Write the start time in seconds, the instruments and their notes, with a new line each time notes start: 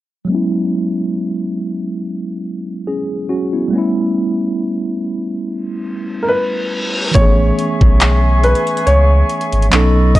0.25 tine electric piano F#3 G#3
0.30 tine electric piano B3 C#4
0.35 tine electric piano E4
2.87 tine electric piano C#4 G#4
3.29 tine electric piano C#4 F#4
3.53 tine electric piano B3 E4
3.68 tine electric piano G3 A3
3.73 tine electric piano B3 C#4
3.78 tine electric piano E4
5.44 reverse cymbal
6.23 grand piano A#4
6.28 grand piano B4
7.11 sub bass A1, tine electric piano E3 A3, grand piano C#5, kick, closed hi-hat
7.16 tine electric piano B3 C#4, flute section G#4 E5 G#5 C#6
7.21 tine electric piano G#4
7.59 closed hi-hat
7.81 sub bass B1, kick
8.01 clap, closed hi-hat
8.43 grand piano B4, closed hi-hat
8.55 closed hi-hat
8.67 closed hi-hat
8.77 closed hi-hat
8.86 sub bass C#2, grand piano C#5, closed hi-hat
9.29 closed hi-hat
9.41 closed hi-hat
9.52 sub bass G#1, closed hi-hat
9.62 closed hi-hat
9.71 sub bass B1, tine electric piano F#3 B3 C#4 D#4, flute section A4 D#5 B5 C#6, clap, closed hi-hat
9.76 tine electric piano A4
10.15 grand piano D#5, kick, closed hi-hat, open hi-hat